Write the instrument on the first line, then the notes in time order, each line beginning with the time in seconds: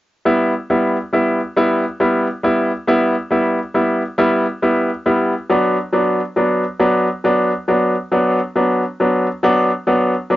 grand piano
0.25 G3 B3 E4
0.70 G3 B3 E4
1.13 G3 B3 E4
1.57 G3 B3 E4
2.00 G3 B3 E4
2.43 G3 B3 E4
2.88 G3 B3 E4
3.31 G3 B3 E4
3.74 G3 B3 E4
4.18 G3 B3 E4
4.62 G3 B3 E4
5.06 G3 B3 E4
5.50 F#3 B3 D4
5.93 F#3 B3 D4
6.36 F#3 B3 D4
6.80 F#3 B3 D4
7.24 F#3 B3 D4
7.68 F#3 B3 D4
8.12 F#3 B3 D4
8.55 F#3 B3 D4
9.00 F#3 B3 D4
9.43 F#3 B3 D4
9.87 F#3 B3 D4
10.30 F#3 B3 D4